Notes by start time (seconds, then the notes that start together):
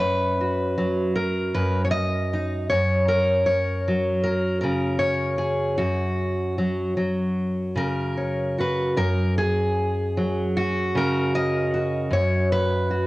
Already playing: F#2 F#3
0.00 B4
0.41 F#4
0.78 F#3
1.15 A#4
1.54 F#2 B4
1.85 C#5
1.91 D#5
2.33 D#4
2.70 F#2 C#5
3.08 A#4
3.46 C#5
3.88 F#3
4.24 A#4
4.61 C#3 A#4
4.99 C#5
5.38 G#4
5.78 F#2 F#4
6.58 F#3
6.97 F#3
7.76 C#3 A#4
8.17 C#5
8.59 F#4 B4
8.97 F#2 A#4
9.38 G#4
10.17 F#3
10.57 F#4
10.95 C#3 A#4
11.35 D#5
11.74 F#4
12.11 F#2 C#5
12.52 B4
12.90 F#4